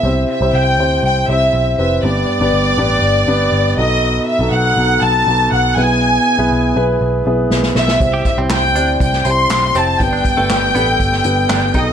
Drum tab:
HH |----------------|----------------|----------------|----------------|
CP |----------------|----------------|----------------|----------------|
SD |----------------|----------------|----------------|------------oooo|
BD |----------------|----------------|----------------|----------------|

HH |x-x-x-x-x-x-x-x-|x-x-x-x-x-x-x-x-|
CP |----x-------x---|----x-------x---|
SD |----o----o--o---|----o----o--o---|
BD |o-o-----o-------|o-o-----o-----o-|